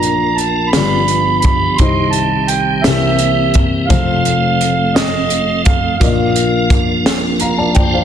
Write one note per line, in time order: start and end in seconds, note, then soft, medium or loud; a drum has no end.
0.00 0.70 A#1 medium
0.00 0.70 A#2 medium
0.00 0.73 F3 medium
0.00 0.75 A#3 soft
0.00 0.74 D4 soft
0.00 0.74 F4 soft
0.00 0.74 A#4 soft
0.00 0.75 A#4 medium
0.00 0.75 D5 medium
0.00 0.39 A#5 medium
0.00 closed hi-hat soft
0.35 0.70 A5 medium
0.35 closed hi-hat soft
0.67 1.37 B5 medium
0.73 1.76 G1 medium
0.73 1.76 G2 soft
0.73 1.80 F3 medium
0.73 0.80 A3 soft
0.73 1.80 D4 medium
0.73 1.80 F4 medium
0.73 1.80 G4 medium
0.73 1.79 G4 medium
0.73 1.81 B4 soft
0.73 1.81 D5 medium
0.73 snare medium
0.73 closed hi-hat medium
0.81 1.83 B3 medium
1.08 closed hi-hat soft
1.40 1.79 B5 medium
1.40 closed hi-hat soft
1.45 kick medium
1.75 2.85 D#3 medium
1.75 2.84 C4 soft
1.75 1.86 F#4 soft
1.75 2.10 C6 medium
1.75 kick medium
1.75 closed hi-hat medium
1.79 2.82 C2 medium
1.79 2.82 C3 medium
1.79 2.85 G3 soft
1.79 2.85 D#4 medium
1.79 2.84 G4 soft
1.79 2.85 C5 medium
1.79 2.86 D#5 medium
1.86 2.84 G4 medium
2.10 2.49 A5 medium
2.10 closed hi-hat soft
2.48 2.85 G5 medium
2.48 closed hi-hat soft
2.82 3.91 E3 medium
2.82 3.91 A#3 medium
2.82 3.89 C4 soft
2.82 3.91 G4 medium
2.82 3.58 E5 medium
2.82 snare medium
2.82 closed hi-hat medium
2.86 3.87 C2 medium
2.86 3.87 C3 medium
2.86 3.91 G4 medium
2.86 3.91 A#4 soft
2.86 3.88 C5 soft
2.86 3.91 E5 medium
3.19 closed hi-hat soft
3.54 kick medium
3.54 closed hi-hat soft
3.86 5.97 F2 medium
3.86 5.96 F4 medium
3.86 3.96 G#4 soft
3.86 4.97 F5 medium
3.90 5.97 F1 medium
3.90 5.97 F3 medium
3.90 5.97 A3 soft
3.90 5.97 C4 soft
3.90 5.97 A4 medium
3.90 5.97 C5 medium
3.90 5.97 F5 medium
3.90 kick medium
3.90 closed hi-hat medium
4.25 closed hi-hat soft
4.61 closed hi-hat soft
4.94 5.61 D#5 medium
4.94 snare medium
4.94 closed hi-hat medium
5.30 closed hi-hat soft
5.65 5.95 F5 medium
5.65 kick medium
5.65 closed hi-hat soft
5.97 8.04 F3 medium
5.97 8.04 A#3 soft
5.97 7.06 D4 soft
5.97 8.04 F4 medium
5.97 8.04 A#4 medium
5.97 7.05 A#4 medium
5.97 6.74 F5 medium
6.01 8.04 A#1 medium
6.01 8.04 A#2 medium
6.01 7.39 D5 soft
6.01 6.08 D#5 soft
6.01 kick medium
6.01 closed hi-hat medium
6.09 7.40 F5 medium
6.36 closed hi-hat soft
6.70 kick medium
6.70 closed hi-hat soft
7.06 8.04 D4 medium
7.06 7.78 F4 soft
7.06 7.78 A#4 medium
7.06 snare medium
7.06 closed hi-hat medium
7.40 7.74 F5 medium
7.40 7.58 F5 soft
7.40 7.57 A#5 medium
7.40 closed hi-hat soft
7.58 7.74 D5 soft
7.58 7.75 A5 medium
7.75 7.92 D5 medium
7.75 8.04 D5 medium
7.75 7.92 G5 medium
7.75 kick medium
7.75 closed hi-hat soft
7.79 8.04 F4 medium
7.79 8.04 C5 medium
7.94 8.04 C5 soft
7.94 8.04 F5 medium